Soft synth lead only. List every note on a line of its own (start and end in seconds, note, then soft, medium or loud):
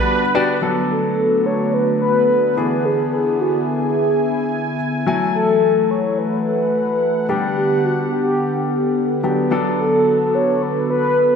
0.91 1.47 A4 loud
1.46 1.75 C#5 loud
1.74 2.01 B4 loud
2.02 2.87 B4 loud
2.85 3.12 G#4 loud
3.13 3.42 G#4 medium
3.41 3.68 F#4 medium
3.68 4.75 G#4 medium
5.35 5.92 A4 loud
5.90 6.20 C#5 loud
6.18 6.45 B4 loud
6.46 7.31 B4 loud
7.29 7.57 G4 loud
7.57 7.86 G4 medium
7.85 8.12 F#4 medium
8.13 9.20 G4 medium
9.79 10.36 A4 loud
10.35 10.64 C#5 loud
10.62 10.90 B4 loud
10.90 11.36 B4 loud